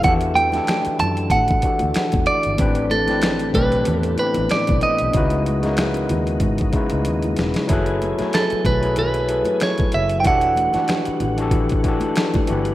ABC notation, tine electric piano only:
X:1
M:4/4
L:1/16
Q:"Swing 16ths" 1/4=94
K:E
V:1 name="Tine electric piano"
[E,=DF=GA]3 [E,DEGA]6 z [E,DFGA]6 | [A,,E,=C=D=GB]3 [A,,E,CDGB]3 [A,,E,CDGAB]4 [A,,E,B,CDGB]6 | [C,G,DEFB]3 [C,G,DEF^AB]6 z [C,G,DEFB]6 | [F,EGAB]3 [F,EAcg]4 [F,EGAB]3 [F,EGAB]6 |
[E,=DF=GA]3 [E,DFGB]4 [E,DFGA]3 [E,DFGA]4 [E,DFGB]2 |]